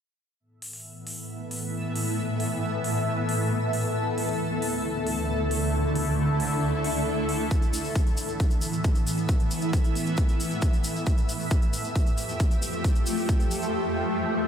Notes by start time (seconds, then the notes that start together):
0.40 A2 E3 B3 A4 E5
0.62 open hi-hat
0.73 open hi-hat
1.07 open hi-hat
1.51 open hi-hat
1.96 open hi-hat
2.40 open hi-hat
2.84 open hi-hat
3.29 open hi-hat
3.73 open hi-hat
3.95 D2 D3 A3 E4
4.18 open hi-hat
4.29 open hi-hat
4.62 open hi-hat
5.07 open hi-hat
5.51 open hi-hat
5.95 open hi-hat
6.40 open hi-hat
6.84 open hi-hat
7.29 open hi-hat
7.51 A2 E3 B3 E5, kick, closed hi-hat, shaker
7.62 closed hi-hat, shaker
7.73 open hi-hat, shaker
7.84 open hi-hat, shaker
7.95 kick, closed hi-hat, shaker
8.07 closed hi-hat, shaker
8.17 open hi-hat, shaker
8.29 closed hi-hat, shaker
8.40 kick, closed hi-hat, shaker
8.50 closed hi-hat, shaker
8.61 open hi-hat, shaker
8.73 closed hi-hat, shaker
8.84 kick, closed hi-hat, shaker
8.95 closed hi-hat, shaker
9.07 open hi-hat, shaker
9.18 closed hi-hat, shaker
9.29 kick, closed hi-hat, shaker
9.40 closed hi-hat, shaker
9.51 open hi-hat, shaker
9.62 closed hi-hat, shaker
9.73 kick, closed hi-hat, shaker
9.84 closed hi-hat, shaker
9.95 open hi-hat, shaker
10.07 closed hi-hat, shaker
10.17 kick, closed hi-hat, shaker
10.29 closed hi-hat, shaker
10.40 open hi-hat, shaker
10.51 closed hi-hat, shaker
10.62 kick, closed hi-hat, shaker
10.73 closed hi-hat, shaker
10.84 open hi-hat, shaker
10.96 closed hi-hat, shaker
11.06 F2 F3 A3 G4, kick, closed hi-hat, shaker
11.18 closed hi-hat, shaker
11.29 open hi-hat, shaker
11.40 open hi-hat, shaker
11.51 kick, closed hi-hat, shaker
11.62 closed hi-hat, shaker
11.73 open hi-hat, shaker
11.84 closed hi-hat, shaker
11.95 kick, closed hi-hat, shaker
12.07 closed hi-hat, shaker
12.18 open hi-hat, shaker
12.29 closed hi-hat, shaker
12.40 kick, closed hi-hat, shaker
12.51 closed hi-hat, shaker
12.62 open hi-hat, shaker
12.73 closed hi-hat, shaker
12.84 kick, closed hi-hat, shaker
12.95 closed hi-hat, shaker
13.06 open hi-hat, shaker
13.17 open hi-hat, shaker
13.29 kick, closed hi-hat, shaker
13.40 closed hi-hat, shaker
13.51 open hi-hat, shaker
13.62 closed hi-hat, shaker
13.73 swell